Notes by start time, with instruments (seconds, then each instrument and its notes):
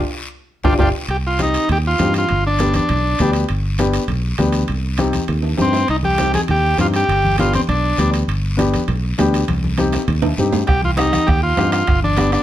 0.64 fingered electric bass G1, upright piano D4 F4 G4, transistor combo organ D4 F4 G4, bombo low, low conga, high timbale, long guiro
0.78 fingered electric bass G1, upright piano D4 F4 G4, transistor combo organ D4 F4 G4, bombo low, low conga, high timbale, long guiro
1.08 fingered electric bass C2, transistor combo organ G4, high conga, high timbale, long guiro
1.27 transistor combo organ F4
1.39 upright piano C4 D#4 G4, transistor combo organ D#4, high conga, high timbale, short guiro
1.54 high timbale, short guiro
1.69 fingered electric bass D#2, transistor combo organ G4, high conga, low conga, high timbale, long guiro
1.87 transistor combo organ F4
1.98 fingered electric bass G2, upright piano C4 D#4 G4, high conga, high timbale, low timbale, short guiro
2.14 high timbale, short guiro
2.18 transistor combo organ F4
2.29 fingered electric bass G1, high conga, low conga, high timbale, long guiro
2.47 transistor combo organ D4
2.59 upright piano B3 D4 G4, high conga, high timbale, short guiro
2.74 transistor combo organ D4, high conga, high timbale, short guiro
2.89 fingered electric bass B1, high conga, low conga, high timbale, long guiro
3.19 fingered electric bass D2, upright piano B3 D4 G4, high conga, low conga, high timbale, short guiro
3.33 high timbale, short guiro
3.49 fingered electric bass G1, high conga, high timbale, long guiro
3.78 upright piano B3 D4 G4, high conga, high timbale, short guiro
3.93 high timbale, short guiro
4.08 fingered electric bass B1, high conga, low conga, high timbale, long guiro
4.38 fingered electric bass D2, upright piano B3 D4 G4, high conga, high timbale, short guiro
4.52 high timbale, short guiro
4.68 fingered electric bass C2, high conga, low conga, high timbale, long guiro
4.98 upright piano C4 D#4 G4, high conga, high timbale, short guiro
5.13 high conga, high timbale, short guiro
5.28 fingered electric bass D#2, high conga, low conga, high timbale, long guiro
5.43 high timbale
5.57 fingered electric bass G2, upright piano C4 D#4 G4, high conga, high timbale, short guiro
5.62 transistor combo organ C4
5.73 low timbale, short guiro
5.88 fingered electric bass C2, transistor combo organ D#4, high conga, high timbale, long guiro
6.03 transistor combo organ G4, high conga
6.18 upright piano C4 D#4 G4, high conga, high timbale, short guiro
6.34 transistor combo organ G#4, high conga, high timbale, short guiro
6.48 fingered electric bass D#2, transistor combo organ G4, high conga, low conga, high timbale, long guiro
6.78 fingered electric bass G2, upright piano C4 D#4 G4, transistor combo organ F4, high conga, high timbale, short guiro
6.94 transistor combo organ G4, high timbale, short guiro
7.08 fingered electric bass G1, high conga, low conga, high timbale, long guiro
7.24 high conga
7.38 upright piano B3 D4 G4, transistor combo organ F4, high conga, high timbale, short guiro
7.53 transistor combo organ C4, high conga, high timbale, short guiro
7.67 fingered electric bass B1, transistor combo organ D4, high conga, low conga, high timbale, long guiro
7.98 fingered electric bass D2, upright piano B3 D4 G4, high conga, high timbale, short guiro
8.13 high timbale, short guiro
8.28 fingered electric bass G1, high conga, high timbale, long guiro
8.57 upright piano B3 D4 G4, high conga, high timbale, short guiro
8.74 high conga, high timbale, short guiro
8.88 fingered electric bass B1, high conga, low conga, high timbale, long guiro
9.18 fingered electric bass D2, upright piano B3 D4 G4, high conga, high timbale, low timbale, short guiro
9.34 high timbale, short guiro
9.48 fingered electric bass C2, high conga, high timbale, long guiro
9.64 high conga
9.78 upright piano C4 D#4 G4, high conga, high timbale, short guiro
9.92 low conga, high timbale, short guiro
10.08 fingered electric bass D#2, low conga, high timbale, long guiro
10.22 low conga, high timbale
10.38 fingered electric bass G2, upright piano C4 D#4 G4, low conga, short guiro
10.53 low conga, low timbale, short guiro
10.67 fingered electric bass C2, transistor combo organ G4, bombo low, bombo rim, high conga, high timbale, long guiro
10.82 transistor combo organ F4, high conga
10.97 upright piano C4 D#4 G4, transistor combo organ D#4, bombo rim, high conga, high timbale, short guiro
11.13 bombo rim, high conga, high timbale, short guiro
11.27 fingered electric bass D#2, transistor combo organ G4, bombo low, bombo rim, high conga, low conga, high timbale, long guiro
11.43 transistor combo organ F4
11.57 fingered electric bass G2, upright piano C4 D#4 G4, bombo rim, high conga, high timbale, low timbale, short guiro
11.72 transistor combo organ F4, bombo rim, high timbale, short guiro
11.87 fingered electric bass G1, bombo low, bombo rim, high conga, low conga, high timbale, long guiro
12.03 transistor combo organ D4, high conga
12.17 upright piano B3 D4 G4, bombo rim, high conga, high timbale, short guiro
12.32 transistor combo organ D4, bombo rim, high timbale, short guiro